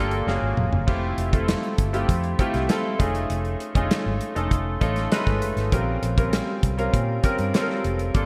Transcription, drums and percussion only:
0.11 closed hi-hat
0.28 snare
0.57 mid tom
0.73 floor tom
0.88 kick, crash
1.18 closed hi-hat
1.33 kick, closed hi-hat
1.48 snare, closed hi-hat
1.63 closed hi-hat
1.78 kick, closed hi-hat
1.94 closed hi-hat
2.09 kick, closed hi-hat
2.24 closed hi-hat
2.39 kick, closed hi-hat
2.54 snare, closed hi-hat
2.69 snare, closed hi-hat
3.00 kick, closed hi-hat
3.15 closed hi-hat
3.30 closed hi-hat
3.45 closed hi-hat
3.60 closed hi-hat
3.75 kick, closed hi-hat
3.91 snare, closed hi-hat
4.21 closed hi-hat
4.36 closed hi-hat
4.51 kick, closed hi-hat
4.81 kick, closed hi-hat
4.96 snare, closed hi-hat
5.12 snare, closed hi-hat
5.27 kick, snare, closed hi-hat
5.42 closed hi-hat
5.57 snare, closed hi-hat
5.72 kick, closed hi-hat
6.03 closed hi-hat
6.18 kick, closed hi-hat
6.33 snare, closed hi-hat
6.63 kick, closed hi-hat
6.79 closed hi-hat
6.94 kick, closed hi-hat
7.24 kick, closed hi-hat
7.38 closed hi-hat
7.54 snare, closed hi-hat
7.70 snare
7.84 closed hi-hat
7.99 closed hi-hat
8.15 kick, closed hi-hat

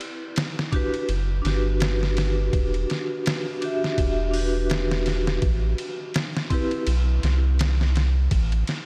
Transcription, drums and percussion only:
0.01 ride
0.36 snare, ride
0.59 snare
0.72 kick, ride
0.94 ride
1.09 ride
1.45 snare, ride
1.80 snare, ride
2.03 snare
2.17 snare, ride
2.53 kick, ride
2.74 ride
2.90 snare, ride
3.26 snare, ride
3.62 ride
3.84 snare
3.98 kick, ride
4.34 open hi-hat
4.70 snare, ride
4.92 snare
5.06 snare, ride
5.27 snare
5.42 kick, ride
5.78 ride
6.14 snare, ride
6.37 snare
6.50 kick, ride
6.71 ride
6.87 ride
7.23 snare, ride
7.59 snare, ride
7.81 snare
7.96 snare, ride
8.31 kick, ride
8.52 ride
8.67 snare, ride

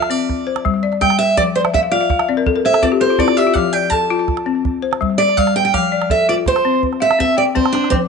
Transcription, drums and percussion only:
0.02 calabash click
0.29 calabash thump
0.56 calabash click
0.66 calabash thump
0.93 calabash click
1.02 calabash thump
1.10 calabash click
1.37 calabash thump, calabash click
1.65 calabash click
1.74 calabash thump
2.10 calabash thump, calabash click
2.19 calabash click
2.46 calabash thump
2.74 calabash click
2.83 calabash thump
3.10 calabash click
3.18 calabash thump
3.28 calabash click
3.55 calabash thump, calabash click
3.91 calabash thump
4.28 calabash thump, calabash click
4.37 calabash click
4.65 calabash thump
4.93 calabash click
5.02 calabash thump
5.29 calabash click
5.38 calabash thump
5.47 calabash click
5.74 calabash thump, calabash click
6.02 calabash click
6.10 calabash thump
6.46 calabash thump
6.56 calabash click
6.83 calabash thump
6.93 calabash click
7.11 calabash click
7.20 calabash thump
7.57 calabash thump
7.66 calabash click
7.75 calabash click
7.84 calabash click
7.92 calabash thump

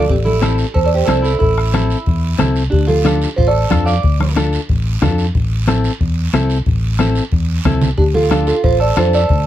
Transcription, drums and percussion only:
0.09 bombo low, long guiro
0.26 high conga
0.42 bombo rim, high conga, short guiro
0.58 short guiro
0.74 bombo low, long guiro
1.08 bombo rim, high conga, short guiro
1.24 short guiro
1.40 bombo low, long guiro
1.58 bombo rim
1.73 bombo rim, high conga, short guiro
1.90 short guiro
2.06 bombo low, long guiro
2.39 bombo rim, high conga, low conga, short guiro
2.56 short guiro
2.72 bombo low, long guiro
2.89 high conga
3.05 bombo rim, high conga, short guiro
3.22 short guiro
3.38 bombo low, long guiro
3.70 bombo low, bombo rim, high conga, short guiro
3.87 short guiro
4.03 bombo low, long guiro
4.20 bombo rim, high conga
4.36 bombo rim, high conga, short guiro
4.53 short guiro
4.69 bombo low, long guiro
5.02 bombo low, bombo rim, high conga, low conga, short guiro
5.18 short guiro
5.35 bombo low, long guiro
5.67 bombo rim, high conga, short guiro
5.84 short guiro
6.01 bombo low, long guiro
6.33 bombo rim, high conga, short guiro
6.49 short guiro
6.66 bombo low, long guiro
6.99 bombo rim, high conga, short guiro
7.15 short guiro
7.32 bombo low, long guiro
7.65 bombo low, bombo rim, high conga, low conga, short guiro
7.81 low conga, short guiro
7.97 bombo low, long guiro
8.14 high conga
8.30 bombo rim, high conga, short guiro
8.47 short guiro
8.64 bombo low, long guiro
8.97 bombo rim, high conga, short guiro
9.13 short guiro
9.29 bombo low, long guiro

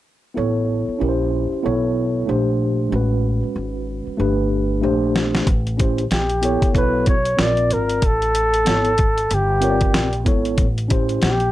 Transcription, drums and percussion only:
5.16 snare
5.35 snare
5.47 kick, closed hi-hat
5.67 closed hi-hat
5.80 kick, closed hi-hat
5.98 closed hi-hat
6.11 snare, closed hi-hat
6.29 closed hi-hat
6.43 closed hi-hat
6.62 kick, closed hi-hat
6.75 kick, closed hi-hat
7.06 kick, closed hi-hat
7.25 closed hi-hat
7.39 snare, closed hi-hat
7.57 closed hi-hat
7.71 closed hi-hat
7.89 closed hi-hat
8.02 kick, closed hi-hat
8.22 closed hi-hat
8.35 closed hi-hat
8.54 closed hi-hat
8.66 snare, closed hi-hat
8.85 closed hi-hat
8.98 kick, closed hi-hat
9.18 closed hi-hat
9.31 closed hi-hat
9.62 closed hi-hat
9.81 kick, closed hi-hat
9.94 snare, closed hi-hat
10.13 closed hi-hat
10.26 kick, closed hi-hat
10.45 closed hi-hat
10.58 kick, closed hi-hat
10.78 closed hi-hat
10.90 kick, closed hi-hat
11.09 closed hi-hat
11.22 snare, closed hi-hat
11.40 closed hi-hat

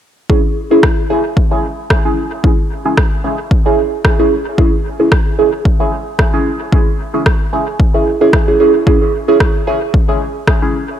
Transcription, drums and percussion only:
0.30 kick
0.83 kick, cross-stick
1.37 kick
1.90 kick, cross-stick
2.44 kick
2.97 kick, cross-stick
3.51 kick
4.05 kick, cross-stick
4.58 kick
5.12 kick, cross-stick
5.65 kick
6.19 kick, cross-stick
6.72 kick
7.26 kick, cross-stick
7.80 kick
8.33 kick, cross-stick
8.87 kick
9.40 kick, cross-stick
9.94 kick
10.47 kick, cross-stick

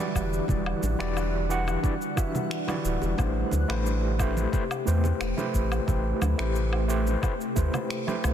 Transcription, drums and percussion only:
0.00 shaker
0.15 kick, low woodblock, shaker
0.33 shaker
0.48 kick, low conga, shaker
0.66 low woodblock
0.83 high conga, shaker
1.00 finger snap, shaker
1.17 low woodblock, shaker
1.51 shaker
1.67 high conga, low woodblock, shaker
1.84 kick, shaker
2.02 shaker
2.17 kick, low woodblock, shaker
2.35 low conga, shaker
2.51 finger snap, shaker
2.68 high conga, low woodblock, shaker
2.85 shaker
3.02 high bongo, shaker
3.18 kick, low conga, low woodblock, shaker
3.51 high conga, shaker
3.70 finger snap, low woodblock, shaker
3.86 shaker
4.19 kick, low woodblock, shaker
4.37 high conga, shaker
4.53 kick, shaker
4.71 low woodblock, shaker
4.87 shaker
5.04 high bongo, low conga, shaker
5.21 finger snap, low woodblock, shaker
5.38 high bongo, high conga, shaker
5.54 kick, shaker
5.72 low woodblock, shaker
5.88 kick, low conga, shaker
6.22 high conga, low woodblock, shaker
6.39 finger snap, shaker
6.56 shaker
6.73 low woodblock
6.90 shaker
7.07 high conga, shaker
7.23 kick, low woodblock, shaker
7.41 shaker
7.57 kick, shaker
7.74 low conga, low woodblock, shaker
7.90 finger snap, shaker
8.08 cross-stick, high conga, shaker
8.24 cross-stick, low conga, low woodblock, shaker

